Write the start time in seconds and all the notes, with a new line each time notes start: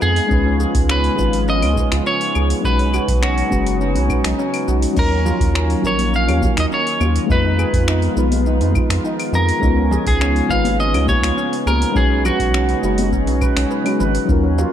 Already playing: D#3 F3 G#3 B3 D#4 F4 B4
0.02 F2 G#4, shaker
0.16 open hi-hat, shaker
0.27 C#2 G#3 C#4 D#4, kick
0.31 C#3 F3 C#4 F4 B4, shaker
0.46 C#4
0.60 G#4, shaker
0.75 C#2, kick, open hi-hat, shaker
0.89 C#4 B4, finger snap, shaker
1.04 open hi-hat, shaker
1.16 G#1 G#3 C#4 D#4 F4 B4, kick, shaker
1.33 open hi-hat, shaker
1.48 C#4 D#5, shaker
1.62 C#2 C#4, open hi-hat, claves, shaker
1.73 G#3 C#4 D#4, kick
1.77 F4 B4, shaker
1.92 C#2 F4, finger snap, open hi-hat, shaker
2.06 C#4 C#5, shaker
2.21 open hi-hat, shaker
2.35 C#2 G#4, claves, shaker
2.50 open hi-hat, shaker
2.61 B1 G#3 C#4 D#4, kick, shaker
2.65 C#3 F#3 B3 D#4 F#4 B4
2.79 C#4, open hi-hat
2.94 F#4, claves, shaker
3.08 B1, kick, open hi-hat, shaker
3.22 C#4 F#4, finger snap, shaker
3.38 open hi-hat, shaker
3.49 F#1 G#3 C#4 D#4 F#4 B4, kick, shaker
3.67 open hi-hat, shaker
3.81 C#4, shaker
3.95 B1 C#4, open hi-hat, shaker
4.06 G#3 C#4 D#4, kick, claves, shaker
4.11 F#4 B4
4.24 B1 D#4, finger snap, open hi-hat, shaker
4.39 C#4, shaker
4.54 open hi-hat, claves, shaker
4.68 B1 F#4, shaker
4.82 open hi-hat, shaker
4.93 D#2 D#3 F#3 A#3 C#4 D#4 F4, kick, crash, shaker
4.97 C#4 F4 A#4
5.11 C#4
5.26 F4, low conga, shaker
5.40 D#2, kick, open hi-hat, shaker
5.55 C#4, finger snap, shaker
5.70 open hi-hat, shaker
5.82 A#1 F#3 C#4 D#4 F4 A#4, kick, shaker
5.87 C#5
5.99 open hi-hat, high conga, shaker
6.13 C#4 F5, shaker
6.28 D#2 C#4, open hi-hat, low conga, claves, shaker
6.39 F#3 C#4 D#4, kick, high conga, shaker
6.44 F4 A#4
6.57 D#2 D#4 D#5, finger snap, open hi-hat, shaker
6.72 C#4 C#5, shaker
6.87 open hi-hat, shaker
7.01 D#2 F4, high conga, claves, shaker
7.16 open hi-hat, shaker
7.26 F2 F3 G#3 B3 D#4, kick
7.30 F4 B4, shaker
7.45 D#4
7.59 G#4, claves, shaker
7.73 F2, kick, open hi-hat, shaker
7.88 D#4, finger snap, shaker
8.02 open hi-hat, shaker
8.15 B1 G#3 B3 D#4 F4 B4, shaker
8.32 open hi-hat, high conga, shaker
8.46 D#4, shaker
8.61 F2 D#4, open hi-hat, shaker
8.72 G#3 B3 D#4, kick, claves, shaker
8.77 F4 B4
8.90 F2 F4, finger snap, open hi-hat, shaker
9.04 D#4, shaker
9.20 open hi-hat, claves, shaker
9.33 F2 G#4 A#4, low conga, shaker
9.49 open hi-hat, shaker
9.60 C#2 C#3 F3 G#3 C#4 D#4, kick, shaker
9.65 B3 F4
9.77 C#4
9.91 G#4, low conga, shaker
10.06 C#2 G#4, kick, open hi-hat, shaker
10.21 C#4, finger snap, shaker
10.36 open hi-hat, shaker
10.49 G#1 G#3 C#4 D#4 F4 B4 F5, kick, shaker
10.65 open hi-hat, high conga, shaker
10.79 C#4 D#5, shaker
10.93 C#2 C#4, open hi-hat, low conga, claves, shaker
11.05 G#3 C#4 D#4 C#5, kick, high conga, shaker
11.10 F4 B4
11.22 C#2 F4, finger snap, open hi-hat, shaker
11.38 C#4, shaker
11.53 open hi-hat, shaker
11.66 C#2 G#4 A#4, high conga, claves, shaker
11.82 open hi-hat, shaker
11.92 B1 G#3 C#4 D#4, kick, shaker
11.96 C#3 F#3 D#4 F#4 G#4 B4
12.11 C#4
12.25 F#4, low conga, claves, shaker
12.40 B1, kick, open hi-hat, shaker
12.54 C#4, finger snap, shaker
12.69 open hi-hat, shaker
12.82 F#1 G#3 C#4 D#4 F#4 B4, shaker
12.98 open hi-hat, high conga, shaker
13.12 C#4, kick, shaker
13.27 B1 C#4, open hi-hat, shaker
13.41 B4, kick, claves, shaker
13.56 B1 C#4, finger snap, open hi-hat, shaker
13.71 B4, shaker
13.84 G#3 C#4 D#4 F#4 B4, open hi-hat, claves, shaker
14.00 G#1 B4, low conga, shaker
14.15 open hi-hat, shaker
14.25 D#2 D#3 F#3 A#3 C#4 D#4 F4, kick, shaker
14.30 F4 A#4
14.44 C#4
14.58 F4, low conga, shaker